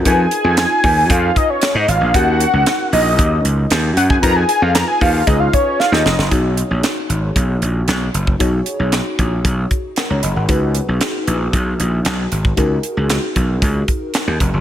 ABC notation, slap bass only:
X:1
M:4/4
L:1/16
Q:1/4=115
K:Cblyd
V:1 name="Slap bass" clef=bass
F,,2 z F,,2 z E,,2 F,,2 z3 A,, A,,, B,,, | E,,3 D,, z2 B,,,2 E,,2 D,,2 E,,2 G,,2 | F,,2 z F,,2 z E,,2 D,,2 z3 E,, F,,, G,,, | =B,,,3 _B,,, z2 ^G,,,2 =B,,,2 _B,,,2 =B,,,2 ^F,,,2 |
=B,,,2 z B,,,2 z _B,,,2 =B,,,2 z3 D,, ^F,,, ^G,,, | D,,3 C,, z2 B,,,2 C,,2 B,,,2 C,,2 A,,,2 | D,,2 z D,,2 z C,,2 D,,2 z3 E,, F,,, G,,, |]